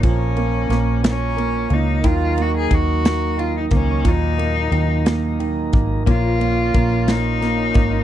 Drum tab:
RD |xxxxxx|xxxxxx|xxxxxx|xxxxxx|
SD |--oo--|---o--|---o--|---oo-|
BD |o-----|o-o--o|o----o|o-o--o|